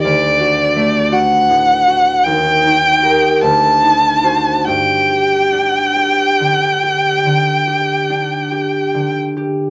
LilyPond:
<<
  \new Staff \with { instrumentName = "Violin" } { \time 4/4 \key d \phrygian \tempo 4 = 48 d''4 fis''4 g''4 a''4 | g''2.~ g''8 r8 | }
  \new Staff \with { instrumentName = "Harp" } { \time 4/4 \key d \phrygian \tuplet 3/2 { d,8 fis'8 a8 fis'8 a,8 fis'8 ees,8 ees'8 <g' bes'>8 d,8 ees'8 <fis' c''>8 } | \tuplet 3/2 { g,8 g'8 d'8 g'8 d8 g'8 d8 g'8 d'8 g'8 d8 g'8 } | }
>>